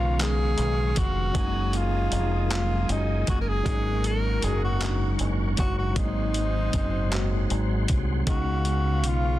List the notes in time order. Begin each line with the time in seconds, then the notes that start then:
Already playing: B1 C#3 D#3 G#3 B3 C#4 F4 A#4 F5 C#6
0.18 D#3 G#3 B3 G#4, clap, closed hi-hat
0.22 C#4 G#4
0.57 B1 D#4, closed hi-hat
0.76 F4
0.96 F1 G#3 F#4, kick, closed hi-hat
1.32 F#1 F#3 G#3 A3 C#4 D#4 G#4 A#4 G#5 D#6, kick, closed hi-hat
1.37 D#4
1.41 A#3
1.73 A#3 F4, closed hi-hat
2.11 F1 D#4, closed hi-hat
2.48 F#3 G#3 A#3 C#4, clap, closed hi-hat
2.52 F4
2.59 G#4
2.88 F#1 D#4 G#4, closed hi-hat
3.27 F#1 A#3 F#4, kick, closed hi-hat
3.41 A#4
3.49 G#4
3.64 G#1 G#2 F#3 G#3 A#3 C#4 D#4 F#4 A#4 F#5 C#6, kick, closed hi-hat
3.69 D#4
4.04 F#3 A#4, closed hi-hat
4.42 F#1 A#3 G#4, closed hi-hat
4.64 F#4
4.79 F#3 G#3 A#3 C#4, clap, closed hi-hat
4.84 D4
4.90 D#4
5.19 F#1 C#4, closed hi-hat
5.57 F#1 F#3 F#4, kick, closed hi-hat
5.78 F#4
5.94 G#1 G#2 F#3 G#3 A#3 C4 D#4 F#4 G#4 C5 C6, kick, closed hi-hat
5.98 D4
6.05 D#4
6.34 F#3, closed hi-hat
6.73 F#1 C4, kick, closed hi-hat
7.09 F#3 G#3 A#3 C4, clap, closed hi-hat
7.14 F#4
7.50 G#1 D#4, closed hi-hat
7.88 C2 F#3, kick, closed hi-hat
8.26 C#2 C#3 G#3 B3 C#4 G#4 B4 C#5 F5 C#6, kick, closed hi-hat
8.30 D#4 F#4
8.65 G#3, closed hi-hat
9.03 B1 B3 F4, closed hi-hat